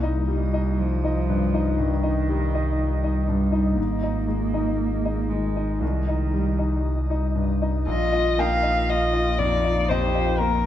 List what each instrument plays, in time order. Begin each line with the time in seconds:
Already playing: sub bass C2, grand piano C2, ambient pad G3 D#4 D#5
0.03 grand piano D#4 D#5
0.28 grand piano G3, cello G3
0.53 grand piano D#4 D#5
0.79 cello F3
1.04 grand piano D#4 D#5
1.29 grand piano G2
1.54 grand piano D#4 D#5
1.79 grand piano G2, cello D#3
2.03 grand piano D#4 D#5
2.29 grand piano G3
2.54 grand piano D#4 D#5
3.04 grand piano D#4 D#5
3.28 grand piano G2, cello G3
3.52 grand piano D#4 D#5
3.77 sub bass G#1, grand piano G#2, ambient pad G#3, cello A#3
4.03 grand piano D#4 D#5
4.28 grand piano G#3
4.54 grand piano D#4 D#5
5.05 grand piano D#4 D#5
5.29 grand piano D#3, cello G#3
5.56 grand piano D#4 D#5
5.81 grand piano C2, sub bass C2, cello D#3, ambient pad G3 D#4 D#5
6.08 grand piano D#4 D#5
6.33 grand piano G3
6.58 grand piano D#4 D#5
7.10 grand piano D#4 D#5
7.35 grand piano G2
7.62 grand piano D#4 D#5
7.86 grand piano A#1, sub bass A#1, ambient pad A#3 D#4 F4, cello F4, violin D#5
8.12 grand piano F4 D#5
8.38 grand piano A#3 G5, cello D#4, violin F5
8.62 grand piano F4 D#5
8.89 cello F4, violin D#5, grand piano F5
9.13 grand piano F4 D#5
9.38 grand piano F2, cello D#4, violin D5
9.64 grand piano F4 D#5
9.89 grand piano F2 D#5, cello G4, violin C5
10.15 grand piano F4 D#5
10.38 grand piano A#3, cello F4, violin A#4